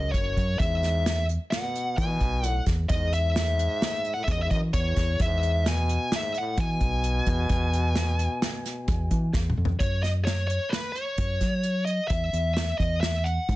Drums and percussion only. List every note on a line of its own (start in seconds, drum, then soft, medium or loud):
0.14 kick medium
0.14 closed hi-hat medium
0.37 kick medium
0.37 closed hi-hat medium
0.60 kick loud
0.60 closed hi-hat medium
0.83 snare soft
0.83 closed hi-hat medium
1.06 snare loud
1.06 closed hi-hat medium
1.29 closed hi-hat medium
1.52 snare medium
1.52 closed hi-hat medium
1.76 closed hi-hat medium
1.98 kick loud
1.98 closed hi-hat medium
2.21 kick medium
2.21 closed hi-hat medium
2.44 closed hi-hat medium
2.66 kick medium
2.66 snare soft
2.66 closed hi-hat medium
2.89 kick loud
2.89 closed hi-hat medium
3.13 closed hi-hat medium
3.36 snare loud
3.36 closed hi-hat medium
3.59 closed hi-hat medium
3.82 snare loud
3.82 closed hi-hat medium
4.05 closed hi-hat medium
4.28 kick loud
4.28 closed hi-hat medium
4.51 kick medium
4.51 closed hi-hat medium
4.73 kick loud
4.73 closed hi-hat medium
4.96 kick medium
4.96 snare soft
4.96 closed hi-hat medium
5.20 kick loud
5.20 closed hi-hat medium
5.43 closed hi-hat medium
5.66 snare loud
5.66 closed hi-hat medium
5.89 closed hi-hat medium
6.12 snare loud
6.12 closed hi-hat medium
6.35 closed hi-hat medium
6.58 kick loud
6.58 closed hi-hat medium
6.81 kick medium
6.81 closed hi-hat medium
7.04 closed hi-hat medium
7.26 kick medium
7.26 closed hi-hat medium
7.49 kick loud
7.49 closed hi-hat medium
7.73 closed hi-hat medium
7.96 snare loud
7.96 closed hi-hat medium
8.19 closed hi-hat medium
8.42 snare loud
8.42 closed hi-hat medium
8.65 snare soft
8.65 closed hi-hat medium
8.88 kick loud
8.88 closed hi-hat medium
9.11 kick medium
9.11 closed hi-hat medium
9.33 kick loud
9.33 snare medium
9.50 mid tom medium
9.65 floor tom medium
9.80 kick loud
9.80 closed hi-hat medium
10.04 snare soft
10.04 closed hi-hat medium
10.27 snare loud
10.27 closed hi-hat medium
10.50 closed hi-hat medium
10.73 snare medium
10.73 closed hi-hat medium
10.95 closed hi-hat medium
11.18 kick medium
11.18 closed hi-hat medium
11.41 kick medium
11.41 snare soft
11.41 closed hi-hat medium
11.63 closed hi-hat medium
11.87 closed hi-hat medium
12.10 kick loud
12.10 closed hi-hat medium
12.33 closed hi-hat medium
12.57 snare loud
12.57 closed hi-hat medium
12.80 kick medium
12.80 closed hi-hat soft
13.03 snare loud
13.03 closed hi-hat medium
13.26 closed hi-hat soft
13.49 kick loud
13.49 closed hi-hat medium